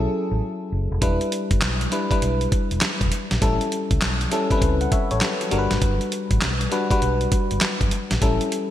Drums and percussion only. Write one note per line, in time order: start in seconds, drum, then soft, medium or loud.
1.02 kick medium
1.02 closed hi-hat medium
1.21 closed hi-hat soft
1.32 closed hi-hat medium
1.51 kick medium
1.51 closed hi-hat medium
1.62 snare loud
1.62 clap medium
1.62 closed hi-hat medium
1.81 closed hi-hat medium
1.92 closed hi-hat medium
2.11 kick medium
2.11 closed hi-hat medium
2.22 closed hi-hat medium
2.41 closed hi-hat soft
2.52 kick loud
2.52 closed hi-hat medium
2.71 closed hi-hat soft
2.81 snare loud
2.81 clap medium
2.81 closed hi-hat medium
3.01 kick medium
3.01 closed hi-hat medium
3.12 closed hi-hat medium
3.31 snare medium
3.31 closed hi-hat medium
3.42 kick medium
3.42 closed hi-hat medium
3.61 closed hi-hat medium
3.72 closed hi-hat medium
3.91 kick medium
3.91 closed hi-hat medium
4.02 snare loud
4.02 clap medium
4.02 closed hi-hat medium
4.21 closed hi-hat medium
4.32 closed hi-hat medium
4.51 kick medium
4.51 closed hi-hat medium
4.62 kick loud
4.62 closed hi-hat medium
4.81 closed hi-hat soft
4.92 kick loud
4.92 closed hi-hat medium
5.11 closed hi-hat soft
5.21 snare medium
5.21 clap medium
5.21 closed hi-hat medium
5.41 closed hi-hat medium
5.51 closed hi-hat medium
5.71 snare medium
5.71 closed hi-hat medium
5.82 kick loud
5.82 closed hi-hat medium
6.01 closed hi-hat soft
6.12 closed hi-hat medium
6.31 kick medium
6.31 closed hi-hat medium
6.42 snare loud
6.42 clap medium
6.42 closed hi-hat medium
6.61 closed hi-hat medium
6.72 closed hi-hat medium
6.91 kick medium
6.91 closed hi-hat medium
7.02 closed hi-hat medium
7.21 closed hi-hat soft
7.32 kick loud
7.32 closed hi-hat medium
7.51 closed hi-hat medium
7.61 snare loud
7.61 clap medium
7.61 closed hi-hat medium
7.81 kick loud
7.81 closed hi-hat medium
7.91 closed hi-hat medium
8.11 snare medium
8.11 closed hi-hat medium
8.22 kick medium
8.22 closed hi-hat medium
8.41 closed hi-hat medium
8.52 closed hi-hat medium